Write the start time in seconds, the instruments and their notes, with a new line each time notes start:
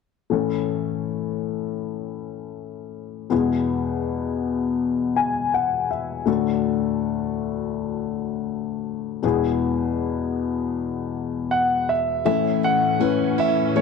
0.30 upright piano A2 E3 A3 C#4 E4 A4
3.30 upright piano E2 B2 G#3 B3 E4 G#4
5.16 upright piano G#5
5.54 upright piano F#5
5.91 upright piano E5
6.26 upright piano D2 A2 A3 D4 F#4 A4
9.22 upright piano E2 B2 G#3 B3 E4 G#4
11.51 grand piano F#5
11.89 grand piano E5
12.25 steel-string acoustic guitar A2 E4, upright piano A2 E3 A3 C#4 E4 A4, string section A2 E3 C#4, grand piano E5
12.63 steel-string acoustic guitar A3, grand piano F#5
13.00 upright piano A3 C#4 E4 B4, steel-string acoustic guitar C#4
13.38 steel-string acoustic guitar E4, grand piano E5
13.76 steel-string acoustic guitar E3, upright piano A3 C#4 E4 A4, grand piano C#5